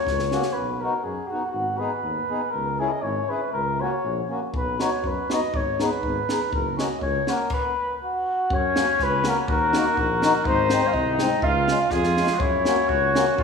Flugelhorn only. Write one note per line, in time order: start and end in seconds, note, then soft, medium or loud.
0.00 0.55 C#5 medium
0.53 0.82 B4 medium
0.80 1.05 A#4 medium
1.04 1.29 G#4 medium
1.28 1.50 F#4 medium
1.51 1.79 F#4 medium
1.78 2.52 B4 medium
2.51 2.81 A#4 medium
2.79 2.91 G#4 medium
2.90 3.04 D#5 medium
3.03 3.31 C#5 medium
3.29 3.53 B4 medium
3.53 3.82 A#4 medium
3.81 4.28 C#5 medium
4.57 4.83 B4 medium
4.82 5.09 C#5 medium
5.07 5.34 B4 medium
5.32 5.58 D#5 medium
5.56 5.81 C#5 medium
5.85 6.50 B4 medium
6.55 6.77 A#4 medium
6.79 7.00 D#5 medium
7.02 7.32 C#5 medium
7.30 7.52 A#4 medium
7.53 7.98 B4 medium
8.04 8.55 F#4 medium
8.54 9.05 C#5 medium
9.03 9.27 B4 medium
9.29 9.38 A#4 medium
9.51 9.95 A#4 medium
10.00 10.48 A#4 medium
10.47 10.89 C5 loud
10.87 10.95 F5 medium
10.94 11.45 D#5 medium
11.44 11.92 F5 medium
11.93 12.41 F4 medium
12.40 13.43 C#5 medium